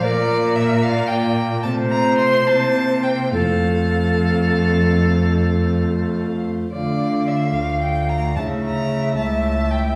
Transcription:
<<
  \new Staff \with { instrumentName = "Violin" } { \time 12/8 \key f \major \tempo 4. = 72 d''4 e''8 f''8 g''4 a''8 bes''8 c'''8 a''4 g''8 | f''1~ f''4. r8 | \key d \minor d''4 e''8 f''8 g''8 bes''8 a''8 bes''4 a''4 g''8 | }
  \new Staff \with { instrumentName = "Flute" } { \time 12/8 \key f \major bes'4. d''4 r8 c''2. | a'1~ a'4~ a'16 r8. | \key d \minor f''2. e''2. | }
  \new Staff \with { instrumentName = "Pipe organ" } { \time 12/8 \key f \major <bes f' d''>2. <a f' c''>4. <bes e' c''>4. | <a f' c''>1. | \key d \minor <a f' d''>2. <a e' e''>2. | }
  \new Staff \with { instrumentName = "Pipe organ" } { \clef bass \time 12/8 \key f \major bes,2. c4. c4. | f,1~ f,4. r8 | \key d \minor d4. d,4. cis4. cis,4. | }
  \new Staff \with { instrumentName = "Cello" } { \clef bass \time 12/8 \key f \major bes,2. c4. c4. | f,1~ f,4. r8 | \key d \minor d4. d,4. cis4. cis,4. | }
>>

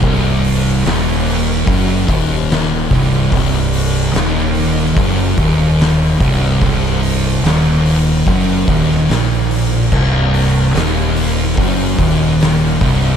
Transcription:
<<
  \new Staff \with { instrumentName = "Distorted electric guitar" } { \clef bass \time 4/4 \key c \minor \tempo 4 = 73 c,4 ees,4 fis,8 ees,4 c,8 | c,4 ees,4 fis,8 ees,4 c,8 | c,4 ees,4 fis,8 ees,8 bes,4 | c,4 ees,4 fis,8 ees,4 c,8 | }
  \new Staff \with { instrumentName = "Distorted electric guitar" } { \clef bass \time 4/4 \key c \minor c,4 ees,4 fis,8 ees,4 c,8 | c,4 ees,4 fis,8 ees,4 c,8 | c,4 ees,4 fis,8 ees,8 bes,4 | c,4 ees,4 fis,8 ees,4 c,8 | }
  \new Staff \with { instrumentName = "Fingered electric bass" } { \clef bass \time 4/4 \key c \minor c,,4 ees,,4 fis,,8 ees,,4 c,,8 | c,,4 ees,,4 fis,,8 ees,,4 c,,8 | c,,4 ees,,4 fis,,8 ees,,8 bes,,4 | c,,4 ees,,4 fis,,8 ees,,4 c,,8 | }
  \new DrumStaff \with { instrumentName = "Drums" } \drummode { \time 4/4 <hho bd>8 hho8 <hho sn>8 hho8 <hho bd>8 <hho bd>8 <hho sn>8 <hho bd>8 | <hho bd>8 hho8 <hho sn>8 hho8 <hho bd>8 <hho bd>8 <hho sn>8 <hho bd>8 | <hho bd>8 hho8 <hho sn>8 hho8 <hho bd>8 <hho bd>16 sn16 <hho sn>8 hho8 | <cymc bd>8 hho8 <hho sn>8 hho8 <hho bd>8 <hho bd>8 <hho sn>8 <hho bd>8 | }
>>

